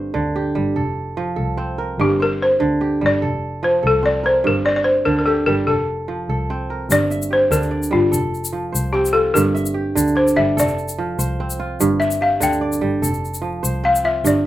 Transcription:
Already playing: kora G2 C4 A4 A#4 C5, balafon A#4
0.14 double bass D2, kora D3
0.36 kora G4
0.55 double bass G1, kora G3
0.76 double bass F1, kora A4
1.17 kora F3
1.36 double bass C2, kora A4
1.57 kora C4
1.78 kora A#4
1.98 double bass G1, kora G2, balafon G4
2.20 balafon A#4, kora C5
2.42 balafon C5
2.60 double bass D2, kora D3
2.81 kora G4
3.01 double bass G1, kora G3
3.06 balafon D5
3.22 double bass F1, kora A4
3.63 kora F3, balafon C5
3.83 double bass C2, kora A4
3.87 balafon A4
4.03 kora C4, balafon D5
4.23 kora A#4, balafon C5
4.44 double bass G1, kora G2, balafon A#4
4.65 kora C5, balafon D5
4.76 balafon D5
4.84 balafon C5
5.05 double bass D2, kora D3, balafon A#4
5.19 balafon A#4
5.26 kora G4, balafon A4
5.46 double bass G1, kora G3, balafon A#4
5.66 double bass F1, balafon A4, kora A4
6.08 kora F3
6.28 double bass C2, kora A4
6.50 kora C4
6.70 kora A#4
6.89 double bass G1, kora G2, balafon D5, shaker
7.11 kora E5, shaker
7.22 shaker
7.31 kora G4, balafon C5
7.50 double bass D2, kora D3, balafon A#4, shaker
7.63 shaker
7.71 kora D5
7.83 shaker
7.91 double bass G1, kora G3, balafon F4
8.12 double bass F1, kora A4, shaker
8.34 shaker
8.45 shaker
8.53 kora F3
8.72 double bass C2, kora C5, shaker
8.93 kora C4, balafon G4
9.05 shaker
9.13 kora F4, balafon A4
9.34 double bass G1, kora G2, balafon A#4, shaker
9.55 kora E5, shaker
9.66 shaker
9.74 kora G4
9.95 double bass D2, kora D3, shaker
10.07 shaker
10.15 balafon C5, kora D5
10.28 shaker
10.36 double bass G1, kora G3, balafon E5
10.57 double bass F1, kora A4, balafon D5, shaker
10.68 shaker
10.78 shaker
10.88 shaker
10.98 kora F3
11.18 double bass C2, kora C5, shaker
11.40 kora C4
11.50 shaker
11.60 kora F4
11.80 double bass G1, kora G2, shaker
12.00 balafon E5, kora E5, shaker
12.11 shaker
12.21 kora G4, balafon F5
12.40 double bass D2, kora D3, balafon G5, shaker
12.53 shaker
12.61 kora D5
12.72 shaker
12.81 double bass G1, kora G3
13.02 double bass F1, kora A4, shaker
13.14 shaker
13.25 shaker
13.34 shaker
13.42 kora F3
13.63 double bass C2, kora C5, shaker
13.84 kora C4, balafon F5
13.95 shaker
14.04 kora F4, balafon E5
14.24 double bass G1, kora G2, balafon D5, shaker

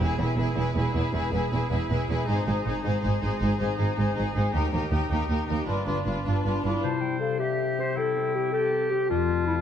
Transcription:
0.00 viola section E4, violin section G#4 B4
0.19 double bass section E1, cello section E2, viola section E4, violin section G#4 B4
0.37 double bass section E1, cello section E2, viola section E4, violin section G#4 B4
0.55 double bass section E1, cello section E2, viola section E4, violin section G#4 B4
0.75 double bass section E1, cello section E2, viola section E4, violin section G#4 B4
0.94 double bass section E1, cello section E2, viola section E4, violin section G#4 B4
1.13 double bass section E1, cello section E2, viola section E4, violin section G#4 B4
1.32 double bass section E1, cello section E2, viola section E4, violin section G#4 B4
1.50 double bass section E1, cello section E2, viola section E4, violin section G#4 B4
1.69 double bass section E1, cello section E2, viola section E4, violin section G#4 B4
1.89 double bass section E1, cello section E2, viola section E4, violin section G#4 B4
2.08 double bass section E1, cello section E2, viola section E4, violin section G#4 B4
2.27 double bass section G#1, cello section G#2, viola section D#4, violin section G#4 C5
2.46 double bass section G#1, cello section G#2, viola section D#4, violin section G#4 C5
2.65 double bass section G#1, cello section G#2, viola section D#4, violin section G#4 C5
2.84 double bass section G#1, cello section G#2, viola section D#4, violin section G#4 C5
3.02 double bass section G#1, cello section G#2, viola section D#4, violin section G#4 C5
3.21 double bass section G#1, cello section G#2, viola section D#4, violin section G#4 C5
3.39 double bass section G#1, cello section G#2, viola section D#4, violin section G#4 C5
3.59 double bass section G#1, cello section G#2, viola section D#4, violin section G#4 C5
3.76 double bass section G#1, cello section G#2, viola section D#4, violin section G#4 C5
3.95 double bass section G#1, cello section G#2, viola section D#4, violin section G#4 C5
4.14 double bass section G#1, cello section G#2, viola section D#4, violin section G#4 C5
4.33 double bass section G#1, cello section G#2, viola section D#4, violin section G#4 C5
4.52 cello section D#2, double bass section D#2, viola section D#4, violin section G4 A#4
4.72 cello section D#2, double bass section D#2, viola section D#4, violin section G4 A#4
4.91 double bass section D#2, cello section D#2, viola section D#4, violin section G4 A#4
5.09 double bass section D#2, cello section D#2, viola section D#4, violin section G4 A#4
5.29 double bass section D#2, cello section D#2, viola section D#4, violin section G4 A#4
5.47 double bass section D#2, cello section D#2, viola section D#4, violin section G4 A#4
5.65 double bass section G1, cello section G2, viola section D4, violin section F4 B4
5.86 double bass section G1, cello section G2, viola section D4, violin section F4 B4
6.04 double bass section G1, cello section G2, viola section D4, violin section F4 B4
6.24 double bass section G1, cello section G2, clarinet D4, viola section D4, violin section F4 B4
6.44 double bass section G1, cello section G2, viola section D4, violin section F4 B4
6.63 double bass section G1, cello section G2, viola section D4, clarinet E4, violin section F4 B4
6.83 harp C3, oboe C5, flute A5
7.01 harp G3, flute G5
7.20 harp G4, clarinet A4, flute F5
7.39 clarinet G4, oboe G4, harp C5, flute E5
7.58 harp G4
7.78 harp C4, clarinet C5
7.95 harp G3, oboe E4, clarinet A4, flute G5
8.15 harp C4
8.34 harp G4, clarinet G4
8.52 oboe G4, clarinet A4, harp C5
8.71 harp G4
8.91 harp C4, clarinet G4
9.09 harp F2, clarinet F4, oboe F4, flute A5
9.30 harp A3
9.46 clarinet E4, harp F4

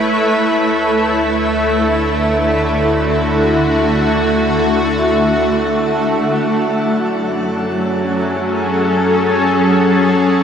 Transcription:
Already playing: ambient pad A3 E4 B4 C#5
0.07 synth drone D2, ambient pad D3
1.67 ambient pad F#4
6.28 synth drone F#2, ambient pad F#3
6.50 ambient pad C#4
7.18 ambient pad G#4
7.28 ambient pad A4

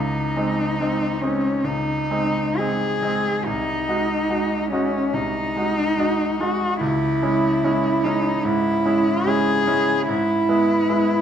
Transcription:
Already playing: grand piano C#2, cello D#4
0.36 grand piano G#3 C4 D#4
0.81 grand piano G#3 C4 D#4
1.21 grand piano G#3 C4 D#4, cello C#4
1.64 grand piano C#2, cello D#4
2.11 grand piano G#3 C4 D#4
2.58 grand piano G#3 C4 D#4, cello G#4
3.02 grand piano G#3 C4 D#4
3.45 grand piano C2, cello D#4
3.88 grand piano G#3 D#4 F#4
4.30 grand piano G#3 D#4 F#4
4.71 grand piano G#3 D#4 F#4, cello C#4
5.14 grand piano C2, cello D#4
5.56 grand piano G#3 D#4 F#4
5.98 grand piano G#3 D#4 F#4
6.40 grand piano G#3 D#4 F#4, cello F#4
6.81 grand piano C#2, cello E4
7.22 grand piano G#3 C#4 E4
7.64 grand piano G#3 C#4 E4
8.04 grand piano G#3 C#4 E4, cello D#4
8.43 grand piano G#2, cello E4
8.86 grand piano G#3 C#4 E4
9.26 grand piano G#3 C#4 E4, cello G#4
9.67 grand piano G#3 C#4 E4
10.08 grand piano G#2, cello E4
10.49 grand piano G#3 B3 E4
10.89 grand piano G#3 B3 E4

